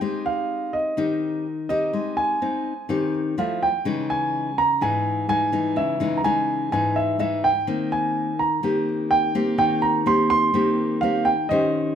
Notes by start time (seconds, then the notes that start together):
Already playing: G5
0.01 G#3 C4 D#4 G4
0.26 F5
0.73 D#5
0.97 D#3 C4 D#4 G4
1.69 C4 D#4 G4 D#5
1.93 G#3
2.17 G#5
2.42 C4 D#4
2.89 D#3 C4 D#4 G4
3.38 F3 A3 E4 F5
3.63 G5
3.85 C#3 E3 G#3 D#4
4.10 G#5
4.58 A#5
4.81 G#2 E3 G#3 D#4 G#5
5.29 E3 G#3 D#4 G#5
5.52 E3 G#3 D#4
5.76 C#3 E5
6.00 E3 G#3 D#4
6.17 A#5
6.24 E3 G#3 D#4 G#5
6.72 G#2 E3 G#3 D#4 G#5
6.96 E5
7.19 E3 G#3 D#4 E5
7.44 G5
7.67 D#3 A#3 C4
7.92 G#5
8.39 A#5
8.63 D#3 A#3 C4 G4
9.11 G5
9.35 A#3 C4 G4
9.58 D#3 G5
9.82 A#5
10.06 A#3 C4 G4 C6
10.30 C6
10.54 D#3 A#3 C4 G4
11.01 A#3 C4 G4 F5
11.25 G5
11.49 D#3 C#4 G4 C5 D#5